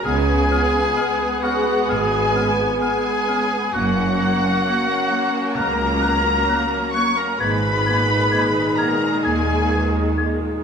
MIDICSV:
0, 0, Header, 1, 10, 480
1, 0, Start_track
1, 0, Tempo, 918836
1, 29, Time_signature, 4, 2, 24, 8
1, 5556, End_track
2, 0, Start_track
2, 0, Title_t, "Flute"
2, 0, Program_c, 0, 73
2, 26, Note_on_c, 0, 89, 77
2, 80, Note_off_c, 0, 89, 0
2, 267, Note_on_c, 0, 89, 76
2, 321, Note_off_c, 0, 89, 0
2, 504, Note_on_c, 0, 89, 80
2, 558, Note_off_c, 0, 89, 0
2, 748, Note_on_c, 0, 89, 78
2, 802, Note_off_c, 0, 89, 0
2, 986, Note_on_c, 0, 89, 79
2, 1040, Note_off_c, 0, 89, 0
2, 1230, Note_on_c, 0, 89, 74
2, 1283, Note_off_c, 0, 89, 0
2, 1470, Note_on_c, 0, 89, 76
2, 1524, Note_off_c, 0, 89, 0
2, 1712, Note_on_c, 0, 89, 73
2, 1766, Note_off_c, 0, 89, 0
2, 1954, Note_on_c, 0, 90, 83
2, 2007, Note_off_c, 0, 90, 0
2, 2190, Note_on_c, 0, 90, 74
2, 2244, Note_off_c, 0, 90, 0
2, 2428, Note_on_c, 0, 90, 79
2, 2481, Note_off_c, 0, 90, 0
2, 2661, Note_on_c, 0, 90, 78
2, 2715, Note_off_c, 0, 90, 0
2, 2907, Note_on_c, 0, 90, 80
2, 2961, Note_off_c, 0, 90, 0
2, 3141, Note_on_c, 0, 90, 73
2, 3196, Note_off_c, 0, 90, 0
2, 3388, Note_on_c, 0, 90, 75
2, 3441, Note_off_c, 0, 90, 0
2, 3625, Note_on_c, 0, 90, 74
2, 3679, Note_off_c, 0, 90, 0
2, 3865, Note_on_c, 0, 92, 81
2, 3919, Note_off_c, 0, 92, 0
2, 4106, Note_on_c, 0, 92, 73
2, 4160, Note_off_c, 0, 92, 0
2, 4342, Note_on_c, 0, 92, 73
2, 4397, Note_off_c, 0, 92, 0
2, 4586, Note_on_c, 0, 92, 74
2, 4640, Note_off_c, 0, 92, 0
2, 4828, Note_on_c, 0, 92, 74
2, 4882, Note_off_c, 0, 92, 0
2, 5067, Note_on_c, 0, 92, 67
2, 5121, Note_off_c, 0, 92, 0
2, 5314, Note_on_c, 0, 92, 72
2, 5368, Note_off_c, 0, 92, 0
2, 5556, End_track
3, 0, Start_track
3, 0, Title_t, "Violin section"
3, 0, Program_c, 1, 48
3, 28, Note_on_c, 1, 80, 124
3, 731, Note_off_c, 1, 80, 0
3, 746, Note_on_c, 1, 78, 117
3, 982, Note_off_c, 1, 78, 0
3, 984, Note_on_c, 1, 80, 121
3, 1459, Note_off_c, 1, 80, 0
3, 1465, Note_on_c, 1, 80, 122
3, 1939, Note_off_c, 1, 80, 0
3, 1951, Note_on_c, 1, 78, 127
3, 2905, Note_on_c, 1, 82, 127
3, 2906, Note_off_c, 1, 78, 0
3, 3620, Note_on_c, 1, 85, 126
3, 3624, Note_off_c, 1, 82, 0
3, 3739, Note_off_c, 1, 85, 0
3, 3747, Note_on_c, 1, 82, 106
3, 3863, Note_on_c, 1, 83, 127
3, 3865, Note_off_c, 1, 82, 0
3, 4581, Note_on_c, 1, 82, 116
3, 4585, Note_off_c, 1, 83, 0
3, 4817, Note_on_c, 1, 80, 113
3, 4824, Note_off_c, 1, 82, 0
3, 5304, Note_off_c, 1, 80, 0
3, 5556, End_track
4, 0, Start_track
4, 0, Title_t, "Oboe"
4, 0, Program_c, 2, 68
4, 26, Note_on_c, 2, 68, 111
4, 747, Note_on_c, 2, 66, 96
4, 754, Note_off_c, 2, 68, 0
4, 987, Note_on_c, 2, 68, 104
4, 995, Note_off_c, 2, 66, 0
4, 1324, Note_off_c, 2, 68, 0
4, 1468, Note_on_c, 2, 68, 105
4, 1948, Note_on_c, 2, 66, 107
4, 1955, Note_off_c, 2, 68, 0
4, 2902, Note_on_c, 2, 70, 107
4, 2909, Note_off_c, 2, 66, 0
4, 3622, Note_off_c, 2, 70, 0
4, 3626, Note_on_c, 2, 73, 98
4, 3742, Note_on_c, 2, 70, 98
4, 3750, Note_off_c, 2, 73, 0
4, 3862, Note_on_c, 2, 71, 113
4, 3870, Note_off_c, 2, 70, 0
4, 4581, Note_off_c, 2, 71, 0
4, 4585, Note_on_c, 2, 70, 107
4, 4827, Note_on_c, 2, 68, 93
4, 4835, Note_off_c, 2, 70, 0
4, 5309, Note_off_c, 2, 68, 0
4, 5556, End_track
5, 0, Start_track
5, 0, Title_t, "French horn section"
5, 0, Program_c, 3, 60
5, 30, Note_on_c, 3, 68, 88
5, 34, Note_on_c, 3, 59, 88
5, 1929, Note_off_c, 3, 68, 0
5, 1931, Note_off_c, 3, 59, 0
5, 1962, Note_on_c, 3, 61, 85
5, 1963, Note_on_c, 3, 58, 81
5, 3791, Note_off_c, 3, 58, 0
5, 3791, Note_off_c, 3, 61, 0
5, 3880, Note_on_c, 3, 46, 87
5, 3882, Note_on_c, 3, 63, 84
5, 5556, Note_off_c, 3, 46, 0
5, 5556, Note_off_c, 3, 63, 0
5, 5556, End_track
6, 0, Start_track
6, 0, Title_t, "Violin section"
6, 0, Program_c, 4, 48
6, 28, Note_on_c, 4, 56, 87
6, 32, Note_on_c, 4, 61, 89
6, 140, Note_off_c, 4, 56, 0
6, 147, Note_on_c, 4, 59, 76
6, 263, Note_off_c, 4, 61, 0
6, 267, Note_off_c, 4, 59, 0
6, 269, Note_on_c, 4, 61, 80
6, 383, Note_on_c, 4, 59, 76
6, 388, Note_off_c, 4, 61, 0
6, 498, Note_on_c, 4, 56, 80
6, 504, Note_off_c, 4, 59, 0
6, 622, Note_off_c, 4, 56, 0
6, 628, Note_on_c, 4, 59, 74
6, 743, Note_on_c, 4, 61, 84
6, 747, Note_off_c, 4, 59, 0
6, 865, Note_off_c, 4, 61, 0
6, 865, Note_on_c, 4, 59, 78
6, 986, Note_off_c, 4, 59, 0
6, 991, Note_on_c, 4, 56, 79
6, 1101, Note_off_c, 4, 56, 0
6, 1106, Note_on_c, 4, 59, 74
6, 1225, Note_on_c, 4, 61, 83
6, 1227, Note_off_c, 4, 59, 0
6, 1344, Note_on_c, 4, 59, 80
6, 1346, Note_off_c, 4, 61, 0
6, 1465, Note_off_c, 4, 59, 0
6, 1469, Note_on_c, 4, 56, 77
6, 1588, Note_off_c, 4, 56, 0
6, 1593, Note_on_c, 4, 59, 76
6, 1710, Note_on_c, 4, 61, 85
6, 1711, Note_off_c, 4, 59, 0
6, 1830, Note_off_c, 4, 61, 0
6, 1839, Note_on_c, 4, 59, 72
6, 1955, Note_off_c, 4, 59, 0
6, 1958, Note_on_c, 4, 61, 79
6, 1959, Note_on_c, 4, 58, 82
6, 2067, Note_off_c, 4, 58, 0
6, 2069, Note_off_c, 4, 61, 0
6, 2076, Note_on_c, 4, 61, 78
6, 2194, Note_off_c, 4, 61, 0
6, 2201, Note_on_c, 4, 58, 83
6, 2316, Note_off_c, 4, 58, 0
6, 2321, Note_on_c, 4, 61, 78
6, 2434, Note_on_c, 4, 58, 85
6, 2435, Note_off_c, 4, 61, 0
6, 2551, Note_off_c, 4, 58, 0
6, 2557, Note_on_c, 4, 61, 75
6, 2671, Note_off_c, 4, 61, 0
6, 2677, Note_on_c, 4, 58, 83
6, 2791, Note_off_c, 4, 58, 0
6, 2806, Note_on_c, 4, 61, 78
6, 2915, Note_off_c, 4, 61, 0
6, 2931, Note_on_c, 4, 58, 79
6, 3030, Note_off_c, 4, 58, 0
6, 3047, Note_on_c, 4, 61, 72
6, 3156, Note_off_c, 4, 61, 0
6, 3163, Note_on_c, 4, 58, 77
6, 3274, Note_off_c, 4, 58, 0
6, 3286, Note_on_c, 4, 61, 81
6, 3395, Note_off_c, 4, 61, 0
6, 3406, Note_on_c, 4, 58, 78
6, 3515, Note_off_c, 4, 58, 0
6, 3527, Note_on_c, 4, 61, 76
6, 3635, Note_off_c, 4, 61, 0
6, 3647, Note_on_c, 4, 58, 80
6, 3755, Note_off_c, 4, 58, 0
6, 3762, Note_on_c, 4, 61, 70
6, 3873, Note_off_c, 4, 61, 0
6, 3879, Note_on_c, 4, 56, 83
6, 3881, Note_on_c, 4, 68, 95
6, 3983, Note_off_c, 4, 56, 0
6, 4006, Note_on_c, 4, 58, 78
6, 4115, Note_off_c, 4, 58, 0
6, 4116, Note_on_c, 4, 59, 80
6, 4230, Note_off_c, 4, 59, 0
6, 4237, Note_on_c, 4, 58, 76
6, 4351, Note_off_c, 4, 58, 0
6, 4363, Note_on_c, 4, 56, 83
6, 4474, Note_off_c, 4, 56, 0
6, 4480, Note_on_c, 4, 58, 76
6, 4593, Note_off_c, 4, 58, 0
6, 4598, Note_on_c, 4, 59, 81
6, 4712, Note_off_c, 4, 59, 0
6, 4724, Note_on_c, 4, 58, 75
6, 4835, Note_off_c, 4, 58, 0
6, 4839, Note_on_c, 4, 56, 77
6, 4945, Note_off_c, 4, 56, 0
6, 4963, Note_on_c, 4, 58, 71
6, 5070, Note_on_c, 4, 59, 76
6, 5075, Note_off_c, 4, 58, 0
6, 5189, Note_off_c, 4, 59, 0
6, 5192, Note_on_c, 4, 58, 79
6, 5311, Note_off_c, 4, 58, 0
6, 5316, Note_on_c, 4, 56, 75
6, 5433, Note_off_c, 4, 56, 0
6, 5448, Note_on_c, 4, 58, 70
6, 5556, Note_off_c, 4, 58, 0
6, 5556, Note_off_c, 4, 68, 0
6, 5556, End_track
7, 0, Start_track
7, 0, Title_t, "Clarinet"
7, 0, Program_c, 5, 71
7, 32, Note_on_c, 5, 59, 78
7, 115, Note_off_c, 5, 59, 0
7, 267, Note_on_c, 5, 59, 71
7, 351, Note_off_c, 5, 59, 0
7, 505, Note_on_c, 5, 59, 78
7, 588, Note_off_c, 5, 59, 0
7, 748, Note_on_c, 5, 59, 74
7, 832, Note_off_c, 5, 59, 0
7, 983, Note_on_c, 5, 59, 80
7, 1067, Note_off_c, 5, 59, 0
7, 1233, Note_on_c, 5, 59, 73
7, 1316, Note_off_c, 5, 59, 0
7, 1474, Note_on_c, 5, 59, 74
7, 1558, Note_off_c, 5, 59, 0
7, 1705, Note_on_c, 5, 59, 69
7, 1789, Note_off_c, 5, 59, 0
7, 1957, Note_on_c, 5, 58, 82
7, 2041, Note_off_c, 5, 58, 0
7, 2198, Note_on_c, 5, 58, 75
7, 2282, Note_off_c, 5, 58, 0
7, 2437, Note_on_c, 5, 58, 82
7, 2521, Note_off_c, 5, 58, 0
7, 2669, Note_on_c, 5, 58, 73
7, 2753, Note_off_c, 5, 58, 0
7, 2908, Note_on_c, 5, 58, 78
7, 2992, Note_off_c, 5, 58, 0
7, 3152, Note_on_c, 5, 58, 69
7, 3236, Note_off_c, 5, 58, 0
7, 3392, Note_on_c, 5, 58, 77
7, 3475, Note_off_c, 5, 58, 0
7, 3627, Note_on_c, 5, 58, 73
7, 3710, Note_off_c, 5, 58, 0
7, 3865, Note_on_c, 5, 58, 80
7, 3949, Note_off_c, 5, 58, 0
7, 4109, Note_on_c, 5, 58, 69
7, 4193, Note_off_c, 5, 58, 0
7, 4342, Note_on_c, 5, 58, 81
7, 4426, Note_off_c, 5, 58, 0
7, 4584, Note_on_c, 5, 58, 70
7, 4667, Note_off_c, 5, 58, 0
7, 4826, Note_on_c, 5, 58, 74
7, 4910, Note_off_c, 5, 58, 0
7, 5061, Note_on_c, 5, 58, 72
7, 5145, Note_off_c, 5, 58, 0
7, 5308, Note_on_c, 5, 58, 72
7, 5391, Note_off_c, 5, 58, 0
7, 5556, End_track
8, 0, Start_track
8, 0, Title_t, "Viola section"
8, 0, Program_c, 6, 48
8, 26, Note_on_c, 6, 59, 92
8, 29, Note_on_c, 6, 56, 93
8, 1948, Note_off_c, 6, 59, 0
8, 1949, Note_off_c, 6, 56, 0
8, 1949, Note_on_c, 6, 54, 90
8, 1950, Note_on_c, 6, 58, 98
8, 3842, Note_off_c, 6, 54, 0
8, 3843, Note_off_c, 6, 58, 0
8, 3865, Note_on_c, 6, 51, 91
8, 3866, Note_on_c, 6, 56, 91
8, 5556, Note_off_c, 6, 51, 0
8, 5556, Note_off_c, 6, 56, 0
8, 5556, End_track
9, 0, Start_track
9, 0, Title_t, "Cello section"
9, 0, Program_c, 7, 48
9, 29, Note_on_c, 7, 49, 99
9, 427, Note_off_c, 7, 49, 0
9, 988, Note_on_c, 7, 44, 97
9, 1388, Note_off_c, 7, 44, 0
9, 1950, Note_on_c, 7, 42, 106
9, 2351, Note_off_c, 7, 42, 0
9, 2908, Note_on_c, 7, 37, 102
9, 3307, Note_off_c, 7, 37, 0
9, 3866, Note_on_c, 7, 44, 100
9, 4266, Note_off_c, 7, 44, 0
9, 4825, Note_on_c, 7, 39, 89
9, 5227, Note_off_c, 7, 39, 0
9, 5556, End_track
10, 0, Start_track
10, 0, Title_t, "Double bass section"
10, 0, Program_c, 8, 48
10, 25, Note_on_c, 8, 37, 93
10, 425, Note_off_c, 8, 37, 0
10, 985, Note_on_c, 8, 32, 102
10, 1386, Note_off_c, 8, 32, 0
10, 1948, Note_on_c, 8, 30, 100
10, 2350, Note_off_c, 8, 30, 0
10, 2906, Note_on_c, 8, 37, 98
10, 3306, Note_off_c, 8, 37, 0
10, 3867, Note_on_c, 8, 32, 93
10, 4266, Note_off_c, 8, 32, 0
10, 4827, Note_on_c, 8, 39, 97
10, 5228, Note_off_c, 8, 39, 0
10, 5556, End_track
0, 0, End_of_file